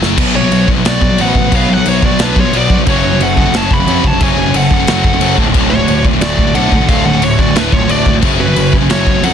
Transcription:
Already playing: F#1 F#2 C#3 F#3
0.03 snare
0.17 B1 B2 F#3 B3 F#4 B4, kick, crash
0.34 B2 F#3 F#4 C#5
0.42 B2 F#3
0.51 B1 B2 F#3, crash
0.68 B1 B2 F#3, kick
0.76 B2 F#3
0.85 B1 B2 F#3 B3 F#4 D5, snare, crash
1.02 B2 F#3, kick
1.09 B2 F#3
1.18 A1 B2 F#3 B3 F#5, crash
1.22 B4
1.35 A1 B2 F#3, kick
1.44 B2 F#3
1.52 B1 B2 F#3 B3, kick, crash
1.56 B4 F5
1.68 B1 B2 F#3
1.72 A4 F#5
1.77 B2 F#3
1.85 B1 B2 F#3 F#4 C#5, crash
2.02 B1 B2 F#3 F#4 D5, kick
2.11 B2 F#3
2.19 B1 B2 F#3 B3 D4, snare, crash
2.24 B4
2.36 B1 B2 F#3, kick
2.40 F4 C#5
2.45 B2 F#3
2.53 B1 B2 F#3 B3, crash
2.57 F#4 D5
2.70 B1 B2 F#3, kick
2.79 B2 F#3
2.87 F#1 F#2 C#3 F#3 C#4 F#4 C#5 G#5, kick, crash
3.04 F#2 C#3
3.13 F#2 C#3
3.19 F#1 F#2 C#3, crash
3.23 A4 F#5
3.37 F#1 F#2 C#3, kick
3.46 F#2 C#3
3.53 F#1 F#2 C#3 F#3 A5, snare, crash
3.58 C#5
3.71 F#2 C#3 F#5 B5, kick
3.80 F#2 C#3
3.87 F2 F#2 C#3 F#3, crash
4.04 F1 F#2 C#3 C#5 A5, kick
4.13 F#2 C#3
4.20 F#1 F#2 C#3 F#3 C#5 G#5, kick, crash
4.37 F#1 F#2 C#3
4.46 F#2 C#3
4.53 F#1 F#2 C#3 A4 F#5, crash
4.71 F#1 F#2 C#3, kick
4.80 F#2 C#3
4.87 F#1 F#2 C#3 F#3, snare, crash
5.04 F#1 F#2 C#3, kick
5.13 F#2 C#3
5.20 F#1 F#2 C#3 F#3, crash
5.37 D1 D2 A2 D3 A3 D4, kick
5.46 D2 A2
5.54 D1 D2 A2 D3, kick, crash
5.70 D2 A2 F#4 C#5
5.79 D2 A2
5.88 D1 D2 A2, crash
6.05 D1 D2 A2, kick
6.13 D2 A2
6.21 D1 D2 A2 D3 F#4 D5, snare, crash
6.38 D2 A2, kick
6.47 D2 A2
6.54 B1 D2 A2 D3 A4 F#5, crash
6.72 B1 D2 A2 D3, kick
6.81 D2 A2
6.89 D1 D2 A2 D3 A4 F5, kick, crash
7.05 D1 D2 A2 A4 F#5
7.13 D2 A2
7.22 D1 D2 A2 F#4 C#5, crash
7.38 D1 D2 A2 F#4 D5, kick
7.46 D2 A2
7.55 D1 D2 A2 D3 D4 B4, snare, crash
7.71 D1 D2 A2 F4 C#5, kick
7.79 D2 A2
7.88 D1 D2 A2 D3 F#4 D5, crash
8.06 D1 D2 A2, kick
8.13 D2 A2
8.21 F#1 F#2 C#3 F#3 C#4 G#5, kick, crash
8.38 F#2 C#3 F#4 B4
8.47 F#2 C#3
8.56 F#1 F#2 C#3, crash
8.72 F#1 F#2 C#3, kick
8.81 F#2 C#3
8.89 F#1 F#2 C#3 F#3 F#4 C#5, snare, crash
9.07 F#2 C#3, kick
9.14 F#2 C#3
9.23 F2 F#2 C#3 F#3 A4 F#5, crash

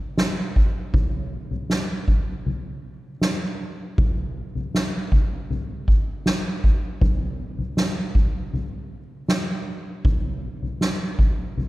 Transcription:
0.18 snare
0.56 kick
0.94 kick, floor tom
1.51 floor tom
1.70 snare
2.08 kick, floor tom
2.46 floor tom
3.21 snare
3.98 kick, floor tom
4.55 floor tom
4.75 snare
5.12 kick, floor tom
5.50 floor tom
5.88 kick
6.26 snare
6.64 kick
7.01 kick, floor tom
7.58 floor tom
7.77 snare
8.15 kick, floor tom
8.53 floor tom
9.28 snare
10.05 kick, floor tom
10.62 floor tom
10.81 snare
11.19 kick, floor tom
11.57 floor tom

